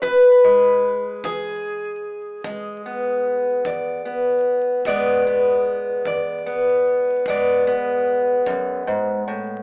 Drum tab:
BD |o--o--o--o--|o--o--o--o--|